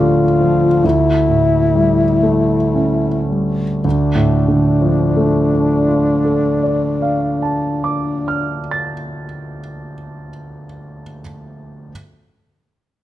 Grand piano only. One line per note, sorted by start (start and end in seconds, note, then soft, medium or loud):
0.00 0.80 D2 soft
0.00 0.86 A2 soft
0.00 0.40 F3 soft
0.00 0.23 A3 soft
0.00 0.66 D4 soft
0.40 0.84 F3 soft
0.84 3.81 D2 soft
1.29 2.04 A2 soft
1.75 2.54 G3 soft
2.23 3.06 A3 soft
2.75 3.64 C#4 soft
3.30 3.85 G3 soft
3.84 8.60 D2 soft
4.15 8.91 A2 soft
4.48 9.24 D3 soft
4.81 9.57 F3 soft
5.17 9.93 A3 soft
5.52 10.28 D4 soft
5.88 10.64 F4 soft
6.25 11.01 A4 soft
6.63 11.20 D5 soft
7.02 11.21 F5 soft
7.42 11.21 A5 soft
7.84 11.20 D6 soft
8.28 11.20 F6 soft
8.71 11.20 A6 soft